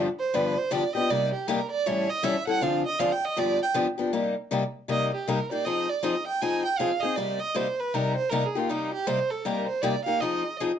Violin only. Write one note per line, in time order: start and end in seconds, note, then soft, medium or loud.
0.20 0.37 C5 medium
0.36 0.60 B4 medium
0.58 0.73 C5 medium
0.72 0.94 D5 medium
0.95 1.12 D#5 medium
1.10 1.33 D5 medium
1.33 1.49 G4 soft
1.48 1.70 A#4 medium
1.71 1.88 D5 loud
1.86 2.11 C#5 medium
2.10 2.25 D#5 medium
2.24 2.47 E5 medium
2.47 2.64 F#5 loud
2.62 2.85 F5 medium
2.86 3.01 D#5 loud
3.00 3.13 F5 medium
3.12 3.27 G5 medium
3.25 3.40 D#5 medium
3.39 3.61 D5 medium
3.63 3.71 G5 loud
4.90 5.11 D#5 medium
5.14 5.30 G4 medium
5.29 5.51 A#4 medium
5.52 5.67 D5 medium
5.65 5.91 D#5 medium
5.89 6.05 D5 medium
6.04 6.26 D#5 medium
6.27 6.43 G5 medium
6.42 6.64 G#5 medium
6.65 6.80 G5 medium
6.79 7.02 F5 medium
7.00 7.18 D#5 medium
7.16 7.42 D5 medium
7.40 7.58 D#5 medium
7.56 7.82 C5 medium
7.80 7.96 B4 medium
7.94 8.15 A#4 medium
8.16 8.31 C5 medium
8.30 8.47 A#4 medium
8.45 8.61 G#4 medium
8.59 8.71 F4 medium
8.70 8.93 D#4 medium
8.94 9.09 G4 medium
9.07 9.32 C5 medium
9.30 9.47 A4 medium
9.45 9.67 A#4 medium
9.67 9.84 C5 medium
9.82 10.04 D5 medium
10.05 10.22 F5 medium
10.21 10.59 D#5 medium